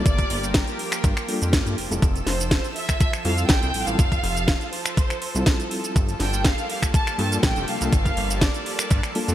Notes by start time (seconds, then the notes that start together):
Already playing: F3 G3 A#3
0.05 G1 G4 D5, kick, closed hi-hat, shaker
0.18 kick, closed hi-hat, shaker
0.30 G1, open hi-hat
0.43 closed hi-hat, shaker
0.54 A#4, kick, snare, closed hi-hat, shaker
0.67 closed hi-hat, shaker
0.79 open hi-hat
0.92 finger snap, closed hi-hat, shaker
1.04 G2, kick, closed hi-hat, shaker
1.17 finger snap, closed hi-hat, shaker
1.28 G3 A#3 D4 F4 A4, open hi-hat
1.42 F2, closed hi-hat, shaker
1.53 kick, snare, closed hi-hat, shaker
1.66 G2, closed hi-hat, shaker
1.78 F1 A4 E6, open hi-hat
1.90 F1 G3 C4 E4 F4 A4, closed hi-hat, shaker
2.02 F1, kick, closed hi-hat, shaker
2.16 closed hi-hat, shaker
2.26 F1 C5, snare, open hi-hat
2.40 closed hi-hat, shaker
2.51 C5, kick, snare, closed hi-hat, shaker
2.64 closed hi-hat, shaker
2.75 E5, open hi-hat
2.89 finger snap, kick, closed hi-hat, shaker
3.00 E5, kick, closed hi-hat, shaker
3.13 finger snap, closed hi-hat, shaker
3.24 F2 G3 C4 E4 F4 A4 F5, open hi-hat
3.38 closed hi-hat, shaker
3.49 A1 G5, kick, snare, closed hi-hat, shaker
3.63 C2, closed hi-hat, shaker
3.74 A1, open hi-hat
3.86 A1 G3 C4 E4 F4 A4 F5, closed hi-hat, shaker
3.99 F1, kick, closed hi-hat, shaker
4.12 kick, closed hi-hat, shaker
4.23 F1, open hi-hat
4.37 closed hi-hat, shaker
4.48 kick, snare, closed hi-hat, shaker
4.61 closed hi-hat, shaker
4.72 C5, open hi-hat
4.86 finger snap, closed hi-hat, shaker
4.97 kick, closed hi-hat, shaker
5.10 finger snap, closed hi-hat, shaker
5.22 open hi-hat
5.34 C2 G3 C4 E4 F4 A4, closed hi-hat, shaker
5.46 kick, snare, closed hi-hat, shaker
5.60 closed hi-hat, shaker
5.71 open hi-hat
5.84 closed hi-hat, shaker
5.96 G1 G3 A#3, kick, closed hi-hat, shaker
6.09 closed hi-hat, shaker
6.20 G1 G5, snare, open hi-hat
6.33 closed hi-hat, shaker
6.44 F5, kick, snare, closed hi-hat, shaker
6.58 closed hi-hat, shaker
6.70 F5, open hi-hat
6.82 finger snap, kick, shaker
6.94 A5, kick, closed hi-hat, shaker
7.07 finger snap, closed hi-hat, shaker
7.18 G2 G3 A#3 D4 F4 A4 A5, open hi-hat
7.32 closed hi-hat, shaker
7.43 A#1 G5, kick, snare, closed hi-hat, shaker
7.56 F1, closed hi-hat, shaker
7.68 C2 F5, open hi-hat
7.80 C2 G3 A#3 D4 F4 A4, closed hi-hat, shaker
7.93 G1 F5, kick, closed hi-hat, shaker
8.06 kick, closed hi-hat, shaker
8.17 G1, open hi-hat
8.30 closed hi-hat, shaker
8.41 D5, kick, snare, closed hi-hat, shaker
8.54 closed hi-hat, shaker
8.66 open hi-hat
8.79 finger snap, closed hi-hat, shaker
8.91 G2, kick, closed hi-hat, shaker
9.03 finger snap, closed hi-hat, shaker
9.15 G3 A#3 D4 F4 A4, open hi-hat
9.28 F2, closed hi-hat, shaker